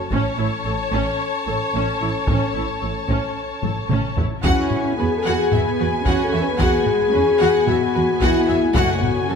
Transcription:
0.11 0.19 A1 medium
0.11 0.19 A2 medium
0.11 4.12 C#4 medium
0.11 0.37 C#4 medium
0.11 4.13 A4 medium
0.11 4.20 C#5 medium
0.11 4.19 A5 medium
0.11 taiko soft
0.38 0.46 A1 soft
0.38 0.46 A2 soft
0.38 0.46 E4 soft
0.66 0.74 A1 soft
0.66 0.74 A2 soft
0.66 0.74 A4 soft
0.93 1.01 A1 medium
0.93 1.01 A2 medium
0.93 1.18 C#4 medium
1.47 1.56 A1 soft
1.47 1.55 A2 soft
1.47 1.55 A4 soft
1.74 1.83 A1 soft
1.74 1.82 A2 medium
1.74 1.99 C#4 soft
2.01 2.09 A1 soft
2.01 2.09 A2 soft
2.01 2.09 E4 soft
2.27 2.37 A1 soft
2.27 2.36 A2 soft
2.27 2.54 C#4 soft
2.27 taiko medium
2.55 2.64 A1 soft
2.55 2.63 A2 soft
2.55 2.63 E4 soft
2.82 2.91 A1 soft
2.82 2.90 A2 soft
2.82 2.90 A4 soft
3.09 3.17 A1 soft
3.09 3.17 A2 medium
3.09 3.34 C#4 soft
3.09 taiko medium
3.63 3.71 A1 soft
3.63 3.71 A2 soft
3.63 3.72 A4 soft
3.63 taiko low-mid medium
3.90 3.98 A1 soft
3.90 3.98 A2 medium
3.90 4.15 C#4 soft
3.90 taiko mid medium
4.17 4.25 A1 soft
4.17 4.25 A2 soft
4.17 4.25 E4 soft
4.17 taiko low medium
4.43 4.52 E2 medium
4.43 8.71 G#3 medium
4.43 4.94 C#4 medium
4.43 4.94 E4 medium
4.43 4.69 F#4 medium
4.43 8.71 F#4 medium
4.43 8.71 B4 medium
4.43 4.69 F#5 medium
4.43 8.71 G#5 medium
4.43 taiko medium
4.71 taiko low-mid soft
4.98 5.07 E2 soft
4.98 5.51 B3 medium
4.98 5.06 F#4 soft
4.98 5.15 G#4 medium
4.98 5.06 B4 soft
5.17 5.34 A4 medium
5.24 5.34 E2 medium
5.24 5.50 F#4 medium
5.24 5.50 F#5 medium
5.34 6.06 G#4 medium
5.52 5.61 E2 soft
5.52 6.05 B3 medium
5.52 5.60 F#4 soft
5.52 5.60 E5 soft
5.52 taiko low-mid medium
5.79 5.88 E2 soft
5.79 5.87 F#4 medium
5.79 5.88 B4 medium
6.05 6.14 E2 medium
6.05 6.58 C#4 medium
6.05 6.23 F#4 medium
6.05 6.31 F#4 medium
6.05 6.31 F#5 medium
6.05 taiko medium
6.24 6.41 A4 medium
6.32 6.41 E2 soft
6.32 6.40 F#4 medium
6.32 6.41 E5 medium
6.42 6.60 B4 medium
6.59 6.68 E2 medium
6.59 6.86 B3 medium
6.59 6.84 F#4 medium
6.59 7.68 G#4 medium
6.59 6.84 F#5 medium
6.59 taiko medium
6.86 7.13 G#3 medium
6.86 taiko low-mid soft
7.13 7.22 E2 medium
7.13 7.40 C#4 medium
7.13 7.22 F#4 soft
7.13 7.22 B4 medium
7.40 7.49 E2 medium
7.40 7.65 B3 medium
7.40 7.65 F#4 medium
7.40 7.66 F#5 medium
7.66 7.76 E2 medium
7.66 8.72 B3 medium
7.66 8.21 F#4 medium
7.66 7.76 F#4 medium
7.66 7.75 E5 soft
7.66 taiko low-mid medium
7.95 8.03 E2 medium
7.95 8.03 F#4 medium
7.95 8.03 B4 medium
8.21 8.30 E2 medium
8.21 8.75 E4 medium
8.21 8.46 F#4 medium
8.21 8.46 F#5 medium
8.21 taiko medium
8.47 8.56 E2 medium
8.47 8.55 F#4 medium
8.47 8.56 E5 soft
8.74 9.35 F#2 medium
8.74 8.84 F#2 medium
8.74 9.01 A3 medium
8.74 9.35 A3 medium
8.74 9.00 F#4 medium
8.74 9.29 F#4 medium
8.74 9.35 F#4 medium
8.74 9.35 C#5 medium
8.74 9.00 F#5 medium
8.74 9.35 G#5 medium
8.74 taiko medium
9.01 9.28 B3 medium
9.01 taiko low-mid medium
9.29 9.35 F#2 medium
9.29 9.35 C#4 medium
9.29 9.35 F#4 medium
9.29 9.35 A4 medium
9.29 9.35 A4 loud

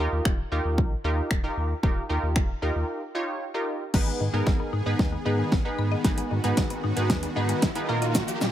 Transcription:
0.00 0.38 D#4 medium
0.00 0.38 F4 medium
0.00 0.39 G4 medium
0.00 0.39 A#4 loud
0.12 0.21 D#2 loud
0.25 0.43 D#1 loud
0.25 finger snap medium
0.25 kick loud
0.51 0.60 D#2 medium
0.51 0.91 D#4 medium
0.51 0.91 F4 medium
0.51 0.91 G4 medium
0.51 0.91 A#4 medium
0.65 0.79 D#2 medium
0.78 0.95 A#1 loud
0.78 kick loud
1.04 1.21 D#2 loud
1.04 1.34 D#4 medium
1.04 1.34 F4 medium
1.04 1.34 G4 medium
1.04 1.34 A#4 medium
1.31 1.48 D#1 loud
1.31 finger snap loud
1.31 kick loud
1.44 1.73 D#4 medium
1.44 1.73 F4 medium
1.44 1.73 G4 medium
1.44 1.73 A#4 medium
1.57 1.74 D#2 loud
1.83 2.00 D#1 loud
1.83 2.03 D#4 medium
1.83 2.03 F4 medium
1.83 2.03 G4 medium
1.83 2.03 A#4 medium
1.83 kick loud
2.09 2.18 D#2 loud
2.09 2.49 D#4 medium
2.09 2.49 F4 medium
2.09 2.49 G4 medium
2.09 2.49 A#4 medium
2.23 2.38 D#2 loud
2.36 2.53 D#1 loud
2.36 finger snap loud
2.36 kick loud
2.62 2.71 D#2 medium
2.62 3.02 D#4 medium
2.62 3.02 F4 medium
2.62 3.02 G4 medium
2.62 3.02 A#4 medium
2.75 2.84 D#2 medium
3.15 3.44 D#4 medium
3.15 3.44 F4 medium
3.15 3.44 G4 medium
3.15 3.45 C#5 loud
3.54 3.84 D#4 medium
3.54 3.84 F4 medium
3.54 3.84 G4 medium
3.54 3.84 A#4 medium
3.94 4.11 G#1 loud
3.94 4.02 D#3 medium
3.94 8.52 D#3 medium
3.94 4.23 B3 medium
3.94 7.85 B3 medium
3.94 4.23 D#4 medium
3.94 4.24 G#4 medium
3.94 6.03 G#4 medium
3.94 4.24 B4 medium
3.94 kick loud
3.94 snare medium
3.94 crash medium
3.94 riser medium
4.07 4.15 G#3 medium
4.20 4.29 G#2 loud
4.20 4.28 D#3 medium
4.33 4.42 G#2 medium
4.33 4.41 G#3 medium
4.33 4.73 B3 medium
4.33 4.73 D#4 medium
4.33 4.73 G#4 medium
4.33 4.73 A#4 medium
4.46 4.64 G#1 loud
4.46 4.55 D#3 medium
4.46 kick loud
4.46 snare medium
4.60 4.68 B3 medium
4.73 4.81 G#2 loud
4.73 4.81 D#4 medium
4.86 4.95 G#2 loud
4.86 5.15 B3 medium
4.86 5.16 D#4 medium
4.86 5.16 G#4 medium
4.86 5.16 B4 loud
4.99 5.16 D#2 loud
4.99 5.07 D#3 medium
4.99 kick loud
4.99 snare medium
5.12 5.20 G#3 medium
5.25 5.43 G#2 loud
5.25 5.33 D#3 medium
5.25 5.55 B3 medium
5.25 5.55 D#4 medium
5.25 5.55 G#4 medium
5.25 5.55 B4 loud
5.39 5.47 G#3 medium
5.52 5.69 G#1 loud
5.52 5.60 D#3 medium
5.52 kick loud
5.52 snare medium
5.65 5.94 B3 medium
5.65 5.94 D#4 medium
5.65 5.95 G#4 medium
5.65 5.95 B4 medium
5.78 5.95 G#2 loud
5.78 5.86 B5 medium
5.92 5.99 D#5 medium
6.04 6.22 G#1 loud
6.04 6.13 D#3 medium
6.04 6.34 B3 medium
6.04 6.34 D#4 medium
6.04 7.87 F#4 medium
6.04 6.34 G#4 medium
6.04 6.34 B4 medium
6.04 kick loud
6.04 snare medium
6.04 closed hi-hat medium
6.18 6.26 G#3 medium
6.18 closed hi-hat soft
6.31 6.39 G#2 loud
6.31 6.39 D#3 medium
6.44 6.53 G#2 loud
6.44 6.52 G#3 medium
6.44 6.83 B3 medium
6.44 6.83 D#4 medium
6.44 6.83 G#4 medium
6.44 6.83 B4 loud
6.44 closed hi-hat soft
6.57 6.74 G#1 loud
6.57 6.65 D#3 medium
6.57 kick loud
6.57 snare medium
6.57 closed hi-hat medium
6.70 6.78 B3 medium
6.70 closed hi-hat soft
6.84 6.92 G#2 loud
6.84 6.91 D#4 medium
6.96 7.11 G#2 loud
6.96 7.26 B3 medium
6.96 7.26 D#4 medium
6.96 7.26 G#4 medium
6.96 7.26 B4 medium
6.96 closed hi-hat medium
7.10 7.27 D#2 loud
7.10 7.18 D#3 medium
7.10 kick loud
7.10 snare medium
7.10 closed hi-hat medium
7.23 7.31 G#3 medium
7.23 closed hi-hat medium
7.36 7.53 G#2 loud
7.36 7.44 D#3 medium
7.36 7.65 B3 medium
7.36 7.66 D#4 medium
7.36 7.66 G#4 medium
7.36 7.66 B4 loud
7.49 7.57 G#3 medium
7.49 closed hi-hat medium
7.62 7.80 G#1 loud
7.62 7.70 D#3 medium
7.62 kick loud
7.62 snare medium
7.62 closed hi-hat medium
7.75 7.89 B3 medium
7.75 7.87 D#4 medium
7.75 7.89 G#4 medium
7.75 7.89 B4 loud
7.75 closed hi-hat soft
7.88 8.23 A#2 loud
7.88 8.52 A#3 medium
7.88 8.41 A#3 medium
7.88 8.41 D#4 medium
7.88 8.52 F4 medium
7.88 8.41 F4 medium
7.88 8.41 A#4 loud
7.88 7.97 A#5 medium
8.02 8.10 D#5 medium
8.02 closed hi-hat soft
8.15 8.23 D#3 loud
8.15 kick loud
8.15 snare medium
8.15 closed hi-hat medium
8.15 shaker medium
8.28 8.36 F3 medium
8.28 closed hi-hat medium
8.28 shaker medium
8.41 8.50 A#2 loud
8.41 8.49 D#3 medium
8.41 snare medium
8.41 shaker medium

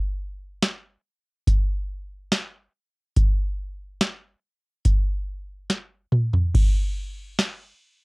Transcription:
0.62 snare medium
0.62 closed hi-hat medium
1.47 kick medium
1.47 closed hi-hat medium
2.32 snare loud
2.32 closed hi-hat medium
3.16 kick medium
3.16 closed hi-hat medium
4.01 snare medium
4.01 closed hi-hat medium
4.85 kick medium
4.85 closed hi-hat medium
5.70 snare medium
5.70 closed hi-hat medium
6.12 mid tom medium
6.33 floor tom medium
6.55 kick loud
6.55 crash medium
6.55 ride medium
7.39 snare loud
7.39 ride medium
7.39 tambourine medium

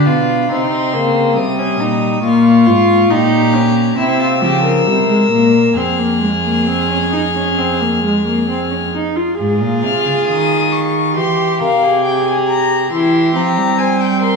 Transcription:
0.00 0.51 D4 medium
0.00 0.51 B5 medium
0.06 0.49 B2 medium
0.06 0.49 F4 medium
0.49 0.94 C3 medium
0.49 1.36 C4 medium
0.49 0.95 D#4 medium
0.49 1.36 C6 medium
0.93 1.38 C#3 medium
0.93 1.39 A#3 medium
1.36 1.79 C3 medium
1.36 2.21 G3 medium
1.36 1.60 C4 medium
1.36 2.21 D#6 medium
1.59 1.82 C#4 medium
1.79 2.22 A#2 medium
1.79 2.23 D#4 medium
2.23 2.68 A#2 medium
2.23 2.68 A#3 medium
2.23 3.12 F4 medium
2.23 3.12 C#6 medium
2.66 3.09 G#2 medium
2.66 3.12 F4 medium
3.10 3.96 A#2 medium
3.10 3.55 D#4 medium
3.10 3.98 G4 medium
3.10 3.98 A#5 medium
3.54 3.97 C#4 medium
3.97 4.43 C3 medium
3.97 4.43 C4 medium
3.97 4.22 E4 medium
3.97 5.73 E6 medium
4.20 4.42 F4 medium
4.42 4.86 C#3 medium
4.42 4.88 F3 medium
4.42 4.63 G4 medium
4.64 5.74 A#4 medium
4.86 5.30 C3 medium
4.86 5.08 G3 medium
5.09 5.31 G#3 medium
5.31 5.75 A#2 medium
5.31 5.78 A#3 medium
5.76 8.90 F2 medium
5.76 6.01 C4 medium
5.76 8.89 G#4 medium
5.76 8.90 F6 medium
5.99 6.21 A#3 medium
6.21 6.29 G#3 medium
6.44 6.69 A#3 medium
6.67 6.89 C4 medium
6.90 7.12 C#4 medium
7.12 7.20 D#4 medium
7.35 7.60 C#4 medium
7.58 7.82 C4 medium
7.81 8.03 A#3 medium
8.03 8.25 G#3 medium
8.26 8.48 A#3 medium
8.49 8.71 C4 medium
8.71 8.79 C#4 soft
8.94 9.18 D#4 medium
9.16 9.38 F4 medium
9.38 9.62 G#2 medium
9.38 11.18 F4 medium
9.38 11.12 G#4 medium
9.60 9.84 A#2 medium
9.83 10.04 C3 medium
9.83 10.24 F6 medium
10.04 10.12 C#3 medium
10.26 11.17 D#3 medium
10.26 10.73 D#6 medium
10.72 11.16 C#6 medium
11.15 11.62 E3 medium
11.15 12.88 G4 medium
11.15 11.62 G4 medium
11.15 11.60 C6 medium
11.60 12.91 C3 medium
11.60 11.84 A#4 medium
11.60 12.03 F5 medium
11.83 12.92 G#4 medium
12.05 12.26 G5 medium
12.27 12.35 G#5 medium
12.48 12.91 A#5 medium
12.91 13.37 E3 medium
12.91 13.35 E4 medium
12.91 13.77 G4 medium
12.91 13.37 C6 medium
13.35 13.58 F3 medium
13.35 14.36 C4 medium
13.35 13.80 A#5 medium
13.57 14.36 G3 medium
13.78 14.21 C5 medium
13.78 14.02 G#5 medium
14.00 14.22 G5 medium
14.22 14.36 A#4 medium
14.22 14.36 C6 medium

